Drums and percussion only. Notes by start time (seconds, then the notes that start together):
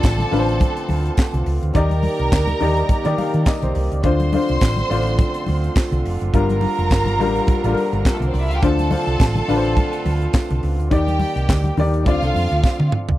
0.03 kick, snare, clap, closed hi-hat, tambourine, muted conga
0.18 closed hi-hat, high conga, low conga
0.32 open hi-hat, low conga
0.49 closed hi-hat
0.60 kick, closed hi-hat, muted conga, high conga
0.77 closed hi-hat
0.89 open hi-hat, muted conga, high conga
1.06 closed hi-hat
1.17 kick, snare, clap, closed hi-hat, tambourine, muted conga
1.33 closed hi-hat, low conga
1.46 open hi-hat, muted conga
1.63 closed hi-hat
1.74 kick, closed hi-hat, muted conga
1.90 closed hi-hat, high conga
2.03 open hi-hat, high conga
2.19 closed hi-hat
2.32 kick, snare, clap, closed hi-hat, tambourine
2.48 closed hi-hat, high conga, low conga
2.61 open hi-hat, muted conga, low conga
2.77 closed hi-hat
2.89 kick, closed hi-hat, muted conga, high conga
3.05 closed hi-hat
3.18 open hi-hat, muted conga, high conga
3.34 closed hi-hat
3.46 kick, snare, clap, closed hi-hat, tambourine
3.62 closed hi-hat, low conga
3.75 open hi-hat, muted conga
3.92 closed hi-hat
4.03 kick, closed hi-hat
4.20 closed hi-hat, high conga
4.32 open hi-hat, muted conga, high conga
4.49 closed hi-hat
4.61 kick, snare, clap, closed hi-hat, tambourine
4.77 closed hi-hat, high conga, low conga
4.91 open hi-hat, low conga
5.06 closed hi-hat
5.19 kick, closed hi-hat, high conga
5.34 closed hi-hat
5.46 open hi-hat, muted conga, high conga
5.64 closed hi-hat
5.76 kick, snare, clap, closed hi-hat, tambourine, muted conga
5.92 closed hi-hat, low conga
6.05 open hi-hat
6.21 closed hi-hat
6.34 kick, closed hi-hat, muted conga
6.49 closed hi-hat, high conga
6.61 open hi-hat, muted conga, high conga
6.79 closed hi-hat
6.90 kick, snare, clap, closed hi-hat, tambourine, muted conga
7.06 closed hi-hat, high conga, low conga
7.19 open hi-hat, muted conga, low conga
7.36 closed hi-hat
7.47 kick, closed hi-hat, muted conga, high conga
7.64 closed hi-hat
7.75 open hi-hat, muted conga, high conga
7.93 closed hi-hat
8.05 kick, snare, clap, closed hi-hat, tambourine
8.20 closed hi-hat, low conga
8.34 open hi-hat, muted conga
8.51 closed hi-hat
8.63 kick, closed hi-hat
8.79 closed hi-hat, high conga
8.91 open hi-hat, muted conga, high conga
9.08 closed hi-hat
9.20 kick, snare, clap, closed hi-hat, tambourine
9.36 closed hi-hat, high conga, low conga
9.49 open hi-hat, muted conga, low conga
9.65 closed hi-hat
9.77 kick, closed hi-hat, muted conga, high conga
9.93 closed hi-hat
10.05 open hi-hat, muted conga, high conga
10.22 closed hi-hat
10.33 kick, snare, clap, closed hi-hat, tambourine, muted conga
10.50 closed hi-hat, low conga
10.63 open hi-hat
10.80 closed hi-hat
10.91 kick, closed hi-hat, muted conga
11.08 closed hi-hat, high conga
11.19 open hi-hat, muted conga, high conga
11.37 closed hi-hat
11.49 kick, snare, clap, closed hi-hat, tambourine, muted conga
11.64 closed hi-hat, high conga, low conga
11.77 open hi-hat, muted conga, low conga
11.94 closed hi-hat
12.06 kick, closed hi-hat, muted conga, high conga
12.22 closed hi-hat
12.34 open hi-hat, muted conga, high conga
12.52 closed hi-hat
12.63 kick, snare, tambourine, muted conga
12.79 high tom, low conga
12.92 mid tom, muted conga
13.09 floor tom